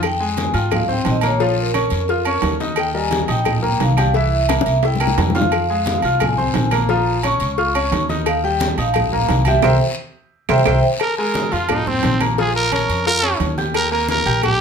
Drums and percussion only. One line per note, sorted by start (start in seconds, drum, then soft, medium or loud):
0.03 cowbell loud
0.03 high conga soft
0.03 low agogo loud
0.03 long guiro medium
0.03 claves medium
0.20 high conga soft
0.37 cowbell medium
0.37 high conga medium
0.37 low timbale medium
0.37 low agogo medium
0.37 short guiro medium
0.54 high conga soft
0.54 low agogo medium
0.54 short guiro medium
0.71 cowbell loud
0.71 high conga soft
0.71 low conga medium
0.71 low agogo loud
0.71 long guiro medium
0.71 claves medium
0.90 high conga soft
0.90 low conga medium
1.05 cowbell medium
1.05 high conga medium
1.05 low timbale medium
1.05 low agogo medium
1.05 short guiro medium
1.21 cowbell medium
1.21 high conga medium
1.21 low agogo loud
1.21 short guiro medium
1.21 claves medium
1.40 cowbell loud
1.40 high conga soft
1.40 long guiro medium
1.58 high conga soft
1.74 cowbell medium
1.74 high conga medium
1.74 low timbale medium
1.74 low agogo loud
1.74 short guiro medium
1.74 claves medium
1.90 high conga soft
1.90 low agogo medium
1.90 short guiro medium
2.08 cowbell loud
2.08 high conga soft
2.08 long guiro medium
2.25 high conga soft
2.25 low agogo loud
2.25 claves medium
2.42 cowbell medium
2.42 high conga medium
2.42 low timbale medium
2.42 low agogo medium
2.42 short guiro medium
2.60 cowbell medium
2.60 high conga medium
2.60 short guiro medium
2.76 cowbell loud
2.76 high conga soft
2.76 low agogo loud
2.76 long guiro medium
2.76 claves medium
2.95 high conga soft
3.11 cowbell medium
3.11 high conga loud
3.11 low timbale medium
3.11 low agogo medium
3.11 short guiro medium
3.28 high conga soft
3.28 low agogo medium
3.28 short guiro medium
3.45 cowbell loud
3.45 high conga soft
3.45 low conga medium
3.45 low agogo loud
3.45 long guiro medium
3.45 claves medium
3.64 high conga soft
3.64 low conga medium
3.80 cowbell medium
3.80 high conga medium
3.80 low timbale medium
3.80 low agogo medium
3.80 short guiro medium
3.97 cowbell medium
3.97 high conga medium
3.97 low agogo loud
3.97 short guiro medium
3.97 claves medium
4.14 cowbell loud
4.14 high conga soft
4.14 long guiro medium
4.32 high conga soft
4.49 cowbell medium
4.49 high bongo loud
4.49 high conga medium
4.49 low timbale medium
4.49 low agogo loud
4.49 short guiro medium
4.49 claves medium
4.61 high bongo medium
4.66 low agogo medium
4.66 short guiro medium
4.83 cowbell loud
4.83 high timbale medium
4.83 long guiro medium
4.96 low bongo medium
5.00 high conga soft
5.00 low agogo loud
5.00 claves medium
5.07 low bongo medium
5.18 cowbell medium
5.18 high conga medium
5.18 low timbale loud
5.18 low agogo medium
5.18 short guiro medium
5.30 low bongo medium
5.35 cowbell medium
5.35 high conga medium
5.35 low timbale medium
5.35 short guiro medium
5.41 low bongo loud
5.52 cowbell loud
5.52 high conga soft
5.52 low agogo loud
5.52 long guiro medium
5.52 claves medium
5.70 high conga soft
5.86 cowbell medium
5.86 high conga medium
5.86 low timbale medium
5.86 low agogo medium
5.86 short guiro medium
6.02 high conga soft
6.02 low agogo medium
6.02 short guiro medium
6.20 cowbell medium
6.20 high conga soft
6.20 low conga medium
6.20 low agogo loud
6.20 long guiro medium
6.20 claves medium
6.39 high conga soft
6.39 low conga medium
6.54 cowbell medium
6.54 high conga medium
6.54 low timbale medium
6.54 low agogo medium
6.54 short guiro medium
6.71 cowbell medium
6.71 high conga medium
6.71 low agogo loud
6.71 short guiro medium
6.71 claves medium
6.89 cowbell loud
6.89 high conga soft
6.89 long guiro medium
7.07 high conga soft
7.23 cowbell medium
7.23 high conga medium
7.23 low timbale medium
7.23 low agogo loud
7.23 short guiro medium
7.23 claves medium
7.40 high conga soft
7.40 low agogo medium
7.40 short guiro medium
7.58 cowbell loud
7.58 high conga soft
7.58 long guiro medium
7.75 high conga soft
7.75 low agogo loud
7.75 claves medium
7.92 cowbell medium
7.92 high conga medium
7.92 low timbale medium
7.92 low agogo medium
7.92 short guiro medium
8.09 cowbell medium
8.09 high conga medium
8.09 short guiro medium
8.26 cowbell loud
8.26 high conga soft
8.26 low agogo loud
8.26 long guiro medium
8.26 claves medium
8.44 high conga soft
8.60 cowbell medium
8.60 high conga loud
8.60 low timbale medium
8.60 low agogo medium
8.60 short guiro medium
8.78 high conga soft
8.78 low agogo medium
8.78 short guiro medium
8.94 cowbell loud
8.94 high conga soft
8.94 low conga medium
8.94 low agogo loud
8.94 long guiro medium
8.94 claves medium
9.13 high conga soft
9.13 low conga medium
9.29 cowbell medium
9.29 high conga medium
9.29 low timbale medium
9.29 low agogo medium
9.29 short guiro medium
9.45 cowbell medium
9.45 high conga medium
9.45 low agogo loud
9.45 short guiro medium
9.45 claves medium
9.62 cowbell loud
9.62 high conga loud
9.62 high timbale loud
9.62 long guiro loud
9.62 claves medium
10.49 cowbell loud
10.49 high conga loud
10.49 high timbale loud
10.49 long guiro loud
10.49 claves loud
10.65 cowbell loud
10.65 high conga medium
10.65 high timbale loud
10.65 long guiro loud
10.65 claves loud
11.00 cowbell loud
11.00 high conga soft
11.00 low agogo loud
11.00 long guiro medium
11.00 claves medium
11.18 high conga soft
11.34 cowbell medium
11.34 high conga loud
11.34 low timbale medium
11.34 low agogo medium
11.34 short guiro medium
11.52 high conga soft
11.52 low agogo medium
11.52 short guiro medium
11.69 cowbell loud
11.69 high conga soft
11.69 low conga medium
11.69 low agogo loud
11.69 long guiro medium
11.69 claves medium
11.87 high conga soft
11.87 low conga medium
12.03 cowbell medium
12.03 high conga medium
12.03 low timbale medium
12.03 low agogo medium
12.03 short guiro medium
12.20 cowbell medium
12.20 high conga medium
12.20 low agogo loud
12.20 short guiro medium
12.20 claves medium
12.38 cowbell loud
12.38 high conga soft
12.38 long guiro medium
12.55 high conga soft
12.72 cowbell medium
12.72 high conga medium
12.72 low timbale medium
12.72 low agogo loud
12.72 short guiro medium
12.72 claves medium
12.89 high conga soft
12.89 low agogo medium
12.89 short guiro medium
13.06 cowbell loud
13.06 high conga soft
13.06 long guiro medium
13.23 high conga soft
13.23 low agogo loud
13.23 claves medium
13.40 cowbell medium
13.40 high conga medium
13.40 low timbale medium
13.40 low agogo medium
13.40 short guiro medium
13.58 cowbell medium
13.58 high conga medium
13.58 short guiro medium
13.74 cowbell loud
13.74 high conga soft
13.74 low agogo loud
13.74 long guiro medium
13.74 claves medium
13.91 high conga soft
14.08 cowbell medium
14.08 high conga medium
14.08 low timbale medium
14.08 low agogo medium
14.08 short guiro medium
14.26 high conga soft
14.26 low agogo medium
14.26 short guiro medium
14.42 cowbell loud
14.42 high conga soft
14.42 low conga medium
14.42 low agogo loud
14.42 long guiro medium
14.42 claves medium